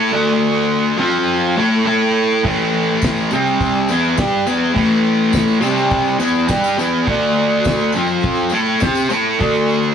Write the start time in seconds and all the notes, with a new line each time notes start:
Already playing: A3 E4 A4
0.12 D3 A3 D4
0.98 F3 C4 F4
1.57 A3 E4 A4
1.85 A3 E4 A4
2.43 A2 E3 A3, kick, open hi-hat
3.02 kick, snare, open hi-hat, tambourine
3.17 tambourine
3.31 C3 G3 C4, tambourine
3.47 tambourine
3.60 kick, open hi-hat, tambourine
3.75 tambourine
3.88 E3 B3 E4, tambourine
4.04 tambourine
4.17 G3 D4 G4, kick, snare, open hi-hat, tambourine
4.46 E3 B3 E4, tambourine
4.74 A2 E3 A3, kick, open hi-hat
5.33 kick, snare, open hi-hat, tambourine
5.48 tambourine
5.61 C3 G3 C4, tambourine
5.77 tambourine
5.91 kick, open hi-hat, tambourine
6.06 tambourine
6.19 E3 B3 E4, tambourine
6.35 tambourine
6.48 G3 D4 G4, kick, snare, open hi-hat, tambourine
6.64 tambourine
6.78 E3 B3 E4, tambourine
7.07 D3 A3 D4, kick, open hi-hat
7.64 kick, snare, open hi-hat, tambourine
7.79 tambourine
7.92 F3 C4, tambourine
7.97 F4
8.07 tambourine
8.21 kick, open hi-hat, tambourine
8.35 tambourine
8.50 A3 E4, tambourine
8.54 A4
8.66 tambourine
8.80 C4 G4 C5, kick, snare, open hi-hat, tambourine
8.95 tambourine
9.10 A3 E4 A4, tambourine
9.39 D3 A3 D4, kick, open hi-hat, tambourine
9.54 tambourine
9.69 tambourine
9.82 tambourine